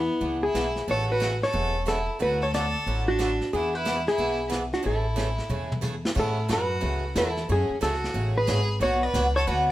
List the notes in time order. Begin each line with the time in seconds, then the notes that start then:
Already playing: B3 E4
0.21 C#2 E3 B3 D4 G#4, brush sweep
0.43 E4 G#4
0.54 B1 E3 B3 D4 G#4, snare, hi-hat pedal
0.76 snare
0.88 A1 C#3 E3 A3 C#4 F#4 A4 C#5, brush sweep
1.10 F#4 B4
1.20 C#3 E3 A3 C#4 F#4, snare, hi-hat pedal
1.43 A4 C#5, snare
1.53 E1 C#3 E3 A3 C#4 F#4, brush sweep
1.86 C#3 E3 A3 C#4 E4 F#4 A4, snare, hi-hat pedal
2.19 D2 D3 F#3 A3 E4 F#4 B4, brush sweep
2.42 A4 C#5
2.53 D3 F#3 A3 E4 F#4 A4 D5, snare, hi-hat pedal
2.86 A1 D3 F#3 A3 E4 F#4, brush sweep
3.07 D4 F#4
3.19 D3 F#3 A3 E4 F#4, snare, hi-hat pedal
3.41 snare
3.53 E2 E3 B3 D4 E4 G#4, brush sweep
3.74 E4 B4
3.85 E3 B3 D4 G#4, snare, hi-hat pedal
4.07 E4 G#4, snare
4.18 B1 E3 B3 D4 G#4, brush sweep
4.50 E3 B3 D4 G#4, snare, hi-hat pedal
4.73 D4 F#4, snare
4.83 A1 C#3 E3 A3 C#4 G#4 A4, brush sweep
4.88 E4
5.16 C#3 E3 A3 C#4 G#4, snare, hi-hat pedal
5.38 snare
5.49 E2 C#3 E3 A3 C#4 G#4, mid tom
5.72 mid tom
5.81 C#3 E3 A3 C#4 G#4, hi-hat pedal, mid tom
6.05 snare
6.15 A2 C#3 E3 A3 C#4 E4 F#4, brush sweep, kick, crash
6.20 A4
6.49 F#2 C#3 E3 A3 C#4 F#4, snare, hi-hat pedal
6.53 B4
6.81 C#2 C#3 E3 A3 C#4 F#4, brush sweep
7.15 E2 C#3 E3 A3 C#4 E4 F#4 A4, snare, hi-hat pedal
7.36 snare
7.49 F#2 C#3 F#3 A3 C#4 G#4, brush sweep
7.70 muted upright bass stroke
7.81 C#2 C#3 F#3 A3 C#4 F#4 G#4 A4, snare, hi-hat pedal
7.93 snare
8.04 snare
8.14 A1 C#3 F#3 A3 C#4 G#4, brush sweep
8.37 G#4 B4
8.47 G#1 C#3 F#3 A3 C#4 G#4, snare, hi-hat pedal
8.80 B1 B2 F#3 B3 D4 F#4 C#5, brush sweep
9.01 B4 D5
9.14 C#2 B2 F#3 B3 D4 F#4 C#5, snare, hi-hat pedal
9.36 A4 C#5
9.47 D2 B2 F#3 B3 D4 F#4 B4 C#5, brush sweep
9.68 F#4